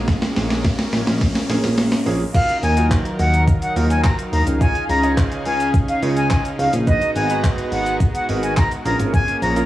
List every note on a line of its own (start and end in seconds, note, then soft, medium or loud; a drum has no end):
0.00 0.18 A#1 loud
0.00 2.30 G#3 medium
0.00 0.70 A#3 medium
0.00 2.32 A#3 medium
0.00 0.70 C#4 medium
0.00 2.32 C#4 medium
0.00 0.70 G#4 loud
0.00 riser medium
0.08 kick loud
0.08 snare loud
0.08 closed hi-hat medium
0.22 snare loud
0.36 0.74 A#1 loud
0.36 snare loud
0.36 open hi-hat medium
0.50 snare loud
0.64 kick loud
0.64 snare loud
0.64 closed hi-hat medium
0.79 snare loud
0.93 1.02 A#1 loud
0.93 snare loud
0.93 open hi-hat medium
1.07 1.35 A#1 medium
1.07 snare loud
1.21 kick loud
1.21 snare loud
1.21 closed hi-hat medium
1.35 snare loud
1.49 1.59 A#1 medium
1.49 1.77 A#3 medium
1.49 1.77 C#4 medium
1.49 1.77 G#4 medium
1.49 snare loud
1.49 open hi-hat medium
1.64 1.92 A#1 medium
1.64 snare loud
1.78 snare loud
1.78 closed hi-hat medium
1.92 snare loud
2.06 2.25 A#1 loud
2.06 2.20 A#3 medium
2.06 2.20 C#4 medium
2.06 2.20 G#4 loud
2.06 open hi-hat medium
2.35 4.59 D#3 medium
2.35 4.59 F#3 medium
2.35 2.55 D#4 medium
2.35 8.82 D#4 medium
2.35 2.56 F4 medium
2.35 2.56 F#4 medium
2.35 4.59 A#4 medium
2.35 2.56 A#4 medium
2.35 2.58 F5 loud
2.35 6.83 F5 medium
2.35 kick loud
2.35 crash loud
2.35 shaker medium
2.49 closed hi-hat medium
2.49 shaker soft
2.63 3.01 D#2 loud
2.63 2.87 G#5 medium
2.63 open hi-hat medium
2.63 shaker medium
2.77 3.26 D#4 medium
2.77 3.26 F4 medium
2.77 3.26 F#4 medium
2.77 3.26 A#4 medium
2.77 closed hi-hat medium
2.77 shaker medium
2.91 kick loud
2.91 clap loud
2.91 shaker medium
3.05 closed hi-hat medium
3.05 shaker medium
3.19 3.57 D#2 loud
3.19 3.43 F#5 medium
3.19 open hi-hat medium
3.19 shaker medium
3.34 closed hi-hat medium
3.34 shaker medium
3.48 kick loud
3.48 shaker medium
3.62 3.74 F#5 medium
3.62 closed hi-hat medium
3.62 shaker medium
3.76 4.14 D#2 loud
3.76 4.18 D#4 medium
3.76 4.18 F4 medium
3.76 4.18 F#4 medium
3.76 4.18 A#4 medium
3.76 open hi-hat medium
3.76 shaker medium
3.90 4.02 G#5 medium
3.90 closed hi-hat medium
3.90 shaker medium
4.04 4.16 A#5 medium
4.04 kick loud
4.04 clap loud
4.04 shaker medium
4.19 closed hi-hat medium
4.19 shaker medium
4.33 4.42 D#2 medium
4.33 4.44 A#5 medium
4.33 open hi-hat medium
4.33 shaker medium
4.47 4.75 C#2 loud
4.47 closed hi-hat medium
4.47 shaker medium
4.61 6.85 C#3 medium
4.61 6.85 C#4 medium
4.61 4.82 D#4 medium
4.61 4.82 F4 medium
4.61 4.82 G#4 medium
4.61 6.85 G#4 medium
4.61 4.82 C#5 medium
4.61 4.85 G#5 loud
4.61 kick loud
4.61 shaker medium
4.75 closed hi-hat soft
4.75 shaker medium
4.89 5.27 C#2 loud
4.89 5.13 A#5 medium
4.89 open hi-hat medium
4.89 shaker medium
5.03 5.52 D#4 medium
5.03 5.52 F4 medium
5.03 5.52 G#4 medium
5.03 5.52 C#5 medium
5.03 closed hi-hat medium
5.03 shaker medium
5.17 kick loud
5.17 clap loud
5.17 shaker medium
5.32 closed hi-hat medium
5.32 shaker soft
5.46 5.84 C#2 medium
5.46 5.70 G#5 medium
5.46 open hi-hat medium
5.46 shaker medium
5.60 closed hi-hat medium
5.60 shaker medium
5.74 kick loud
5.74 shaker medium
5.88 6.00 F5 medium
5.88 closed hi-hat medium
5.88 shaker medium
6.02 6.40 C#2 loud
6.02 6.44 D#4 medium
6.02 6.44 F4 medium
6.02 6.44 G#4 medium
6.02 6.44 C#5 medium
6.02 open hi-hat medium
6.02 shaker medium
6.17 6.29 G#5 medium
6.17 closed hi-hat medium
6.17 shaker medium
6.30 6.43 G#5 medium
6.30 kick loud
6.30 clap loud
6.30 shaker medium
6.45 closed hi-hat medium
6.45 shaker medium
6.59 6.68 C#2 loud
6.59 6.71 F5 medium
6.59 open hi-hat medium
6.59 shaker medium
6.73 7.02 A#1 loud
6.73 closed hi-hat medium
6.73 shaker medium
6.87 8.84 G#3 medium
6.87 8.84 B3 medium
6.87 7.08 D#4 medium
6.87 7.08 F#4 medium
6.87 8.84 F#4 medium
6.87 7.08 G#4 medium
6.87 7.08 B4 medium
6.87 7.11 D#5 loud
6.87 8.84 A#5 medium
6.87 kick loud
6.87 shaker medium
7.02 closed hi-hat soft
7.02 shaker medium
7.16 7.53 G#1 loud
7.16 7.39 G#5 medium
7.16 open hi-hat medium
7.16 shaker medium
7.30 7.78 D#4 medium
7.30 7.79 F#4 medium
7.30 7.79 G#4 medium
7.30 7.79 B4 medium
7.30 closed hi-hat medium
7.30 shaker medium
7.44 kick loud
7.44 clap loud
7.44 shaker medium
7.58 closed hi-hat medium
7.58 shaker medium
7.72 8.10 G#1 medium
7.72 7.96 F#5 medium
7.72 open hi-hat medium
7.72 shaker medium
7.86 closed hi-hat medium
7.86 shaker medium
8.00 kick loud
8.00 shaker medium
8.15 8.26 F#5 medium
8.15 closed hi-hat medium
8.15 shaker medium
8.29 8.67 G#1 loud
8.29 8.71 D#4 medium
8.29 8.71 F#4 medium
8.29 8.71 G#4 medium
8.29 8.71 A#4 medium
8.29 open hi-hat medium
8.29 shaker medium
8.43 8.55 G#5 medium
8.43 closed hi-hat medium
8.43 shaker medium
8.57 8.69 A#5 medium
8.57 kick loud
8.57 clap loud
8.57 shaker medium
8.71 closed hi-hat medium
8.71 shaker medium
8.85 8.95 A#1 loud
8.85 9.66 G#3 medium
8.85 9.66 A#3 medium
8.85 9.66 C#4 medium
8.85 9.42 C#4 medium
8.85 9.42 F4 medium
8.85 9.42 G#4 medium
8.85 9.42 A#4 medium
8.85 8.97 A#5 medium
8.85 open hi-hat medium
8.85 shaker medium
8.99 9.28 G#1 loud
8.99 closed hi-hat medium
8.99 shaker medium
9.14 9.37 G#5 loud
9.14 kick loud
9.14 shaker medium
9.28 closed hi-hat soft
9.28 shaker soft
9.42 9.66 A#1 loud
9.42 9.66 A#5 medium
9.42 open hi-hat medium
9.42 shaker medium
9.56 9.66 C#4 medium
9.56 9.66 F4 medium
9.56 9.66 G#4 medium
9.56 9.66 A#4 medium
9.56 closed hi-hat medium
9.56 shaker medium